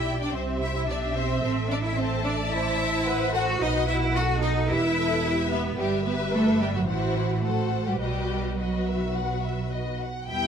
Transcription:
Already playing: double bass section B1, cello section E4, viola section G4 D5, violin section E5 G5
0.21 cello section D4, violin section D5
0.34 double bass section C2, cello section C4, viola section G4 C5, violin section C5 E5
0.62 cello section E4, violin section E5
0.75 cello section E4, violin section E5
0.87 double bass section B1, cello section D4, viola section G4 E5, violin section D5
1.15 cello section C4, violin section C5
1.43 double bass section A1, cello section C4, viola section A4, violin section C5
1.70 cello section D4, violin section D5
1.85 cello section E4, violin section E5
1.97 cello section C4, viola section A4 E5, violin section C5 A5
2.25 cello section D4, violin section D5
2.52 cello section E4, viola section C5 D5, violin section E5
2.81 viola section C5
3.06 viola section B4, violin section F#5
3.34 cello section F#4, viola section A4, violin section F#5
3.60 double bass section B1, cello section D#4, viola section F#4 B4, violin section D#5 F#5
3.88 cello section E4, violin section E5
4.16 cello section F#4, viola section F#4 A4, violin section F#5
4.42 cello section D#4, violin section D#5
4.70 double bass section E1, cello section E4, viola section G4 B4, violin section E5
4.98 viola section A4
5.23 viola section G4 B4, violin section E5
5.52 cello section B3, violin section B4
5.78 double bass section G1, cello section G3, viola section G4 B4, violin section G4 E5
6.06 cello section B3, violin section B4
6.34 cello section A3, violin section A4
6.61 cello section G3, violin section G4
6.76 cello section F#3, violin section F#4
6.88 double bass section A1, cello section E3, violin section E4 F#5, viola section F#4 C5
7.44 cello section A3, viola section F#4 C5, violin section A4 F#5
7.87 cello section G3, violin section G4
8.00 double bass section B1, cello section G3, viola section F#4 B4, violin section G4 D#5
8.58 cello section F#3, viola section F#4 B4, violin section F#4 D#5
8.87 violin section E5
9.15 violin section F#5
9.44 violin section E5
9.72 violin section D#5
10.01 violin section F#5
10.27 double bass section E2, viola section G3 B3, violin section E4 E5 G5

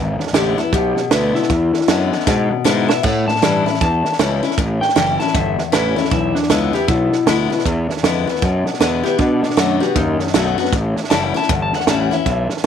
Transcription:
Already playing: picked electric bass G#1, steel-string acoustic guitar E2, clean electric guitar E5
0.18 muted picked electric bass stroke, snare
0.27 snare
0.33 picked electric bass A1, steel-string acoustic guitar D3 G#3 B3 E4, clean electric guitar G4, snare, hi-hat pedal
0.58 steel-string acoustic guitar B3 E4, clean electric guitar E4, muted picked electric bass stroke, snare
0.73 picked electric bass B1, steel-string acoustic guitar B2, clean electric guitar G4, kick, snare
0.96 muted picked electric bass stroke, snare
1.11 picked electric bass D2, steel-string acoustic guitar D3 G#3 B3 E4, clean electric guitar B4, snare, hi-hat pedal
1.35 clean electric guitar E4, muted picked electric bass stroke, snare
1.43 snare
1.50 picked electric bass E2, steel-string acoustic guitar E2, kick, snare
1.73 muted picked electric bass stroke, snare
1.81 snare
1.88 picked electric bass F#2, steel-string acoustic guitar D3 G#3 B3 E4, snare, hi-hat pedal
2.12 muted picked electric bass stroke, snare
2.20 snare
2.27 picked electric bass G#2, steel-string acoustic guitar B2, kick, snare
2.51 muted picked electric bass stroke
2.64 picked electric bass G#2, steel-string acoustic guitar D3 G#3 B3 E4, snare, hi-hat pedal
2.88 steel-string acoustic guitar B3 E4, clean electric guitar E5, muted picked electric bass stroke, snare
3.03 steel-string acoustic guitar A2, picked electric bass A2, clean electric guitar F#5, kick, snare, splash
3.28 clean electric guitar A5, muted picked electric bass stroke, snare
3.36 snare
3.42 picked electric bass G2, steel-string acoustic guitar E3 G3 C#4 E4, snare, hi-hat pedal
3.66 steel-string acoustic guitar C#4 E4, muted picked electric bass stroke, snare
3.74 snare
3.81 picked electric bass E2, steel-string acoustic guitar E2, clean electric guitar A5, kick, snare
4.05 muted picked electric bass stroke, snare
4.12 snare
4.19 picked electric bass C#2, steel-string acoustic guitar E3 G3 C#4 E4, snare, hi-hat pedal
4.43 steel-string acoustic guitar C#4 E4, muted picked electric bass stroke, snare
4.51 snare
4.58 picked electric bass A1, steel-string acoustic guitar A2, kick, snare
4.81 clean electric guitar G5, muted picked electric bass stroke, snare
4.89 snare
4.96 picked electric bass F#1, steel-string acoustic guitar E3 G3 C#4 E4, clean electric guitar G5, snare, hi-hat pedal
5.20 steel-string acoustic guitar C#4 E4, clean electric guitar A5, muted picked electric bass stroke, snare
5.27 snare
5.34 picked electric bass G1, steel-string acoustic guitar E2, clean electric guitar E5, kick, snare
5.58 muted picked electric bass stroke, snare
5.72 picked electric bass A1, steel-string acoustic guitar E3 G3 C#4 E4, clean electric guitar B4, snare, hi-hat pedal
5.96 steel-string acoustic guitar C#4 E4, clean electric guitar A4, muted picked electric bass stroke, snare
6.04 snare
6.11 picked electric bass B1, steel-string acoustic guitar E2, clean electric guitar E4, kick, snare
6.35 clean electric guitar D4, muted picked electric bass stroke, snare
6.43 snare
6.50 picked electric bass C#2, steel-string acoustic guitar D3 G#3 B3 E4, clean electric guitar E4, snare, hi-hat pedal
6.73 steel-string acoustic guitar B3 E4, clean electric guitar G4, muted picked electric bass stroke, snare
6.88 picked electric bass B1, steel-string acoustic guitar B2, clean electric guitar E4, kick, snare
7.12 muted picked electric bass stroke, snare
7.26 picked electric bass D2, steel-string acoustic guitar D3 G#3 B3 E4, snare, hi-hat pedal
7.50 steel-string acoustic guitar B3 E4, muted picked electric bass stroke, snare
7.59 snare
7.65 picked electric bass E2, steel-string acoustic guitar E2, kick, snare
7.89 muted picked electric bass stroke, snare
7.97 snare
8.03 picked electric bass F2, steel-string acoustic guitar D3 G#3 B3 E4, snare, hi-hat pedal
8.27 steel-string acoustic guitar B3 E4, muted picked electric bass stroke, snare
8.35 snare
8.42 picked electric bass F#2, steel-string acoustic guitar B2, kick, snare
8.66 muted picked electric bass stroke, snare
8.74 snare
8.80 picked electric bass E2, steel-string acoustic guitar D3 G#3 B3 E4, clean electric guitar B4, snare, hi-hat pedal
9.03 steel-string acoustic guitar B3 E4, clean electric guitar G4, muted picked electric bass stroke, snare
9.18 steel-string acoustic guitar B2, picked electric bass B2, clean electric guitar D4, kick, snare
9.42 clean electric guitar D4, muted picked electric bass stroke, snare
9.50 snare
9.57 picked electric bass F#2, steel-string acoustic guitar D#3 A3 B3 F#4, clean electric guitar D4, snare, hi-hat pedal
9.80 steel-string acoustic guitar B3 F#4, clean electric guitar G4, muted picked electric bass stroke, snare
9.96 picked electric bass D#2, steel-string acoustic guitar F#2, clean electric guitar D#4, kick, snare
10.19 muted picked electric bass stroke, snare
10.27 snare
10.34 picked electric bass B1, steel-string acoustic guitar D#3 A3 B3 F#4, snare, hi-hat pedal
10.58 steel-string acoustic guitar B3 F#4, muted picked electric bass stroke, snare
10.65 snare
10.72 picked electric bass A1, steel-string acoustic guitar A2, kick, snare
10.96 muted picked electric bass stroke, snare
11.04 snare
11.10 picked electric bass F#1, steel-string acoustic guitar E3 G3 C#4 E4, clean electric guitar A5, snare, hi-hat pedal
11.24 clean electric guitar F#5
11.34 steel-string acoustic guitar C#4 E4, clean electric guitar A5, muted picked electric bass stroke, snare
11.42 snare
11.49 picked electric bass G1, steel-string acoustic guitar E2, clean electric guitar F#5, kick, snare
11.62 clean electric guitar A5
11.73 clean electric guitar F#5, muted picked electric bass stroke, snare
11.80 snare
11.87 picked electric bass A1, steel-string acoustic guitar E3 G3 C#4 E4, clean electric guitar A5, snare, hi-hat pedal
12.01 clean electric guitar F#5
12.11 steel-string acoustic guitar C#4 E4, clean electric guitar E5, muted picked electric bass stroke, snare
12.26 picked electric bass B1, steel-string acoustic guitar E2, kick, snare
12.50 muted picked electric bass stroke, snare
12.57 snare

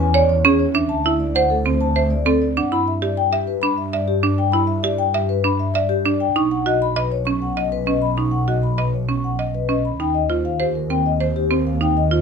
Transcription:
Already playing: double bass section E2
0.00 vibraphone G#5
0.14 marimba C#5, vibraphone D5
0.29 vibraphone C#5
0.45 marimba C#4, vibraphone G#4
0.59 vibraphone C#5
0.74 marimba D4, vibraphone E5
0.89 double bass section D2, vibraphone A5
1.04 marimba E4, vibraphone E5
1.20 vibraphone D5
1.35 marimba C5, vibraphone F#5
1.50 vibraphone A4
1.65 marimba C4, vibraphone C5
1.81 vibraphone A5
1.95 marimba C5, vibraphone E5
2.10 vibraphone D5
2.25 marimba C4, vibraphone A4
2.42 vibraphone D5
2.57 marimba D4, vibraphone F#5
2.72 double bass section G2, marimba E4, vibraphone B5
2.88 vibraphone E5
3.02 marimba G4, vibraphone D5
3.17 vibraphone G5
3.32 vibraphone G4, marimba E5
3.47 vibraphone B4
3.62 marimba D4, vibraphone B5
3.78 vibraphone E5
3.93 vibraphone D5, marimba E5
4.08 vibraphone G4
4.23 marimba D4, vibraphone D5
4.38 vibraphone G5
4.52 marimba E4, vibraphone B5
4.67 vibraphone E5
4.83 marimba G4, vibraphone D5
4.98 vibraphone G5
5.14 vibraphone G4, marimba E5
5.29 vibraphone B4
5.44 marimba D4, vibraphone B5
5.60 vibraphone E5
5.74 vibraphone D5, marimba E5
5.89 vibraphone G4
6.05 marimba D4, vibraphone D5
6.20 vibraphone G5
6.35 double bass section B1, marimba D#4, vibraphone C#6
6.51 vibraphone F#5
6.66 marimba F#4, vibraphone D#5
6.82 vibraphone B5
6.96 vibraphone B4, marimba D#5
7.12 vibraphone C#5
7.25 marimba C#4, vibraphone C#6
7.42 vibraphone F#5
7.57 vibraphone D#5, marimba D#5
7.72 vibraphone B4
7.86 marimba C#4, vibraphone D#5
8.02 vibraphone B5
8.17 marimba D#4, vibraphone C#6
8.31 vibraphone F#5
8.48 marimba F#4, vibraphone D#5
8.63 vibraphone B5
8.78 vibraphone B4, marimba D#5
8.94 vibraphone C#5
9.09 marimba C#4, vibraphone C#6
9.24 vibraphone F#5
9.39 marimba D#5, vibraphone D#5
9.55 vibraphone B4
9.69 marimba C#4, vibraphone D#5
9.85 vibraphone B5
9.99 double bass section D#2, marimba D#4, vibraphone G5
10.14 vibraphone D#5
10.29 marimba F4, vibraphone C5
10.45 vibraphone F5
10.60 vibraphone G4, marimba C5
10.75 vibraphone A#4
10.90 marimba C4, vibraphone G5
11.06 vibraphone D#5
11.20 marimba C5, vibraphone C5
11.36 vibraphone G4
11.51 marimba C4, vibraphone C5
11.67 vibraphone F5
11.81 marimba D#4, vibraphone G5
11.97 vibraphone D#5
12.11 marimba F4, vibraphone C5

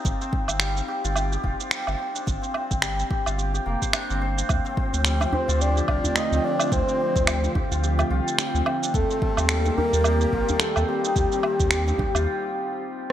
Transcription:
Already playing: santur G3 D#4 F4 G4
0.05 sub bass G1, santur C4, kick, shaker
0.21 santur C4, shaker
0.32 santur C4, kick
0.48 sub bass G1, santur C4, low woodblock, shaker
0.60 santur G3, finger snap, shaker
0.77 santur C4, shaker
0.88 santur G4
1.04 sub bass G1, santur F4, shaker
1.16 santur G4, low woodblock, shaker
1.32 santur G4, shaker
1.43 sub bass F1, santur F4, kick
1.59 santur C4, shaker
1.71 santur G3, finger snap, shaker
1.87 sub bass G1, santur C4, low woodblock, shaker
1.98 santur C4
2.15 santur D4, shaker
2.26 sub bass G1, santur C4, kick, shaker
2.42 santur C4, shaker
2.54 santur C4, low woodblock
2.70 sub bass G1, santur C4, kick, shaker
2.82 santur G3, finger snap, shaker
2.98 santur C4, shaker
3.10 santur G4, kick
3.26 sub bass G1, santur F4, low woodblock, shaker
3.38 santur G4, shaker
3.54 santur G4, shaker
3.66 sub bass F1, santur A#3
3.82 santur C5, kick, shaker
3.93 santur D4, finger snap, low woodblock, shaker
4.10 sub bass G1, santur C4, shaker
4.21 santur C5
4.37 santur C4, shaker
4.49 sub bass D2, analog synth pad D3 F3 A3 C4 F4, santur C4, kick, low woodblock, shaker
4.65 santur C4, shaker
4.77 santur C4, kick
4.93 sub bass D2, santur C4, shaker
5.05 santur G3, finger snap, shaker
5.20 santur C4, djembe slap, djembe tone, low woodblock, shaker
5.32 santur G4, soft synth lead C5, djembe bass
5.48 sub bass D2, santur F4, shaker
5.60 santur G4, soft synth lead D5, shaker
5.76 santur G4, shaker
5.88 sub bass C2, santur F4, soft synth lead D5, kick, low woodblock
6.04 santur C4, djembe bass, shaker
6.16 santur G3, soft synth lead D#5, finger snap, djembe slap, shaker
6.32 sub bass D2, santur C4, shaker
6.44 santur C4, soft synth lead D5
6.59 santur D4, low woodblock, shaker
6.72 sub bass D2, santur C4, soft synth lead C5, kick, shaker
6.88 santur C4, shaker
7.00 santur C4
7.16 sub bass D2, santur C4, kick, shaker
7.27 santur G3, finger snap, low woodblock, shaker
7.44 santur C4, djembe slap, djembe tone, shaker
7.55 santur G4, kick, djembe bass
7.71 sub bass D2, santur F4, shaker
7.83 santur G4, shaker
7.98 santur G4, djembe slap, low woodblock, shaker
8.10 sub bass C2, santur F4
8.27 santur C4, shaker
8.39 santur G3, finger snap, shaker
8.54 sub bass D2, santur C4, shaker
8.66 santur C4, djembe slap, low woodblock
8.82 santur D4, shaker
8.93 sub bass D#2, analog synth pad D#3 G3 A#3 G4 D5, santur C4, soft synth lead A4, kick, shaker
9.10 santur C4, shaker
9.22 santur C4, kick
9.37 sub bass D#2, santur C4, low woodblock, shaker
9.49 santur G3, finger snap, shaker
9.65 santur C4, djembe slap, djembe tone, shaker
9.77 santur G4, soft synth lead A#4, djembe bass
9.93 sub bass D#2, santur F4, shaker
10.04 santur G4, low woodblock, shaker
10.21 santur G4, shaker
10.33 sub bass A#1, santur F4, kick
10.48 santur C4, djembe bass, shaker
10.60 santur G3, soft synth lead A4, finger snap, djembe slap, shaker
10.76 sub bass D#2, santur C4, low woodblock, shaker
10.88 santur C4, soft synth lead G4
11.05 santur D#4, shaker
11.16 sub bass D#2, santur C4, kick, shaker
11.32 santur C4, shaker
11.43 santur C4, low woodblock
11.60 sub bass D#2, santur C4, kick, djembe tone, shaker
11.71 santur G3, finger snap, shaker
11.87 santur C4, djembe slap, djembe tone, shaker
11.98 santur G4, kick, djembe bass
12.15 sub bass D#2, santur F4, djembe tone, low woodblock, shaker

